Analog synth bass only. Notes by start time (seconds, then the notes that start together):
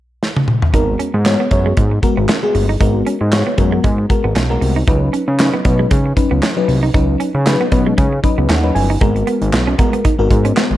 0.74 G#1
1.14 G#2
1.51 F#2
1.77 G#2
2.17 G#1
2.55 G1
2.80 G#1
3.21 G#2
3.58 F#2
3.84 G#2
4.24 G#1
4.36 B1
4.62 C2
4.88 C#2
5.28 C#3
5.65 B2
5.91 C#3
6.31 C#2
6.69 C2
6.94 C#2
7.35 C#3
7.72 B2
7.98 C#3
8.38 C#2
8.49 D#2
8.75 G1
9.01 G#1
9.41 G#1
9.53 B1
10.19 G#1
10.30 G#2
10.71 G#1